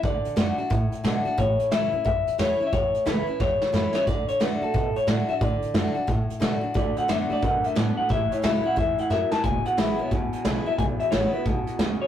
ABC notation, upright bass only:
X:1
M:4/4
L:1/8
Q:"Swing" 1/4=179
K:A
V:1 name="Upright bass" clef=bass
D,, z F,, z A,, z B,, z | A,,, z C,, E,, F,, z E,, z | E,, z C,, z E,, z F,, z | D,, z F,, A,, B,, z A,, z |
A,, z F,, z A,, z B,, z | D,, z F,, A,, B,, z A,, z | A,,, z C,, z E,, z F,, z | E,,, z G,,, B,,, D,, z B,,, z |
B,,, z G,,, z B,,, z D,, z |]